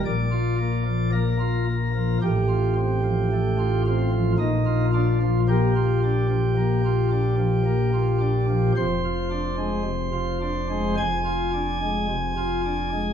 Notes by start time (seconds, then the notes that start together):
0.05 A#1 A#2 D5
0.31 F4
0.58 A#3
0.85 F3
1.12 A#3 A#4
1.40 F4
1.66 A#3
1.95 F3
2.21 A1 A2 G4
2.49 F4
2.75 C4
3.04 F3
3.32 A3
3.59 F4
3.86 C4 F4
4.12 F3
4.39 A#1 A#2 D#4
4.66 F4
4.94 D4 F4
5.23 F3
5.48 A#3 G4
5.76 F4
6.04 D4
6.30 F3
6.57 A#3
6.85 F4
7.11 D4
7.39 F3
7.66 A#3
7.94 F4
8.20 D4
8.49 F3
8.76 F1 F2 C5
9.05 F4
9.31 D4
9.58 G#3
9.84 C3
10.13 F4
10.41 D4
10.70 G#3
10.97 F1 F2 G#5
11.25 F4
11.53 D4
11.82 G#3
12.08 C3
12.37 F4
12.65 D4
12.93 G#3